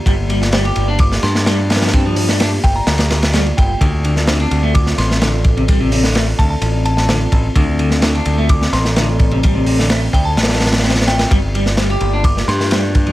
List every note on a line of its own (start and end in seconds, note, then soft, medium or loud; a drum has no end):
0.00 3.77 A#3 medium
0.00 11.27 F4 medium
0.00 3.77 G4 medium
0.00 3.77 D5 medium
0.06 0.70 G1 loud
0.06 0.12 G3 loud
0.06 kick loud
0.06 ride medium
0.30 0.39 G3 medium
0.30 ride medium
0.42 snare soft
0.52 0.63 G3 loud
0.52 snare loud
0.52 ride medium
0.65 0.87 G4 medium
0.65 ride soft
0.76 1.17 G1 medium
0.76 ride medium
0.88 0.98 D4 loud
0.99 1.13 D6 loud
0.99 kick loud
0.99 ride medium
1.12 snare medium
1.23 2.57 G2 medium
1.23 1.36 C6 loud
1.23 snare soft
1.23 ride medium
1.35 snare medium
1.46 1.56 G3 loud
1.46 snare loud
1.46 ride medium
1.70 snare medium
1.70 ride medium
1.76 snare medium
1.76 ride medium
1.82 1.87 F3 loud
1.82 snare medium
1.82 ride medium
1.87 snare medium
1.87 ride medium
1.93 2.03 C4 medium
1.93 kick loud
1.93 ride medium
2.06 2.15 F3 loud
2.16 2.28 F3 loud
2.16 open hi-hat medium
2.28 2.39 G3 loud
2.28 snare medium
2.40 2.50 D4 medium
2.40 snare loud
2.40 ride medium
2.63 2.79 G1 medium
2.63 2.73 G5 medium
2.63 kick loud
2.63 ride medium
2.76 3.22 A#5 loud
2.87 3.51 D2 medium
2.87 snare loud
2.87 ride medium
2.98 snare loud
2.98 ride medium
3.10 snare loud
3.10 ride medium
3.23 snare loud
3.23 ride medium
3.33 3.44 G3 loud
3.33 snare loud
3.33 ride medium
3.46 ride soft
3.57 3.73 G1 medium
3.57 3.65 G5 medium
3.57 kick loud
3.57 ride medium
3.69 3.77 G5 medium
3.81 4.45 D2 loud
3.81 3.87 D3 loud
3.81 11.27 C4 medium
3.81 11.27 A4 medium
3.81 13.12 D5 medium
3.81 kick loud
3.81 ride medium
4.04 4.14 D3 medium
4.04 ride medium
4.16 snare soft
4.27 4.38 D3 loud
4.27 snare loud
4.27 ride medium
4.40 4.62 D4 medium
4.40 ride soft
4.51 4.92 D2 medium
4.51 ride medium
4.63 4.72 A3 loud
4.75 4.87 D6 loud
4.75 kick loud
4.75 ride medium
4.86 snare soft
4.98 6.32 A1 medium
4.98 5.11 C6 loud
4.98 snare soft
4.98 ride medium
5.11 snare soft
5.21 5.31 D3 medium
5.21 snare loud
5.21 ride medium
5.44 kick medium
5.44 ride medium
5.57 5.63 C3 loud
5.57 ride soft
5.68 5.78 G3 medium
5.68 kick loud
5.68 ride medium
5.80 5.90 C3 loud
5.92 6.03 C3 loud
5.92 open hi-hat medium
6.04 6.14 D3 loud
6.04 snare medium
6.15 6.25 A3 medium
6.15 snare loud
6.15 ride medium
6.38 6.54 D2 medium
6.38 6.46 A5 medium
6.38 kick medium
6.38 ride medium
6.50 6.58 A5 medium
6.61 7.26 A1 medium
6.61 ride medium
6.85 7.32 A5 medium
6.85 ride medium
6.97 snare soft
7.09 7.19 D3 loud
7.09 snare loud
7.09 ride medium
7.32 7.48 A1 loud
7.32 kick medium
7.32 ride medium
7.55 8.19 D2 medium
7.55 7.61 D3 loud
7.55 kick loud
7.55 ride medium
7.79 7.89 D3 medium
7.79 ride medium
7.91 snare soft
8.02 8.12 D3 loud
8.02 snare loud
8.02 ride medium
8.15 8.37 D4 medium
8.15 ride soft
8.25 8.66 D2 medium
8.25 ride medium
8.38 8.47 A3 loud
8.49 8.63 D6 loud
8.49 kick loud
8.49 ride medium
8.62 snare medium
8.73 10.07 A1 loud
8.73 8.86 C6 loud
8.73 snare soft
8.73 ride medium
8.85 snare medium
8.96 9.06 D3 loud
8.96 snare loud
8.96 ride medium
9.19 kick medium
9.19 ride medium
9.31 9.38 C3 loud
9.31 ride soft
9.43 9.53 G3 medium
9.43 kick loud
9.43 ride medium
9.55 9.65 C3 loud
9.66 9.77 C3 loud
9.66 open hi-hat medium
9.79 9.89 D3 loud
9.79 snare medium
9.90 10.00 A3 medium
9.90 snare loud
9.90 ride medium
10.13 10.37 D2 medium
10.13 10.23 G5 loud
10.13 kick loud
10.13 ride medium
10.25 10.72 A5 loud
10.37 11.24 A1 medium
10.37 snare medium
10.37 ride medium
10.43 snare medium
10.43 ride medium
10.49 snare medium
10.49 ride medium
10.54 snare medium
10.54 ride medium
10.60 snare medium
10.60 ride medium
10.66 snare medium
10.66 ride medium
10.72 snare loud
10.72 ride medium
10.78 snare medium
10.78 ride medium
10.84 10.90 C4 medium
10.84 snare medium
10.84 ride medium
10.90 snare medium
10.90 ride medium
10.95 snare medium
10.95 ride medium
11.02 snare medium
11.02 ride medium
11.07 11.17 A3 medium
11.07 11.15 G5 medium
11.07 snare loud
11.07 ride medium
11.19 11.27 G5 medium
11.19 snare loud
11.19 ride medium
11.31 11.95 G1 loud
11.31 11.37 G3 loud
11.31 13.12 A#3 medium
11.31 13.12 F4 medium
11.31 13.12 G4 medium
11.31 kick loud
11.31 ride medium
11.54 11.64 G3 medium
11.54 ride medium
11.66 snare soft
11.77 11.87 G3 loud
11.77 snare loud
11.77 ride medium
11.90 12.12 G4 medium
11.90 ride soft
12.00 12.41 G1 medium
12.00 ride medium
12.14 12.23 D4 loud
12.24 12.38 D6 medium
12.24 kick loud
12.24 ride medium
12.37 snare medium
12.48 13.12 G2 medium
12.48 12.61 C6 medium
12.48 snare soft
12.48 ride medium
12.60 snare soft
12.71 12.81 G3 loud
12.71 snare loud
12.71 ride medium
12.95 kick loud
12.95 ride medium
13.07 13.12 F3 loud
13.07 ride soft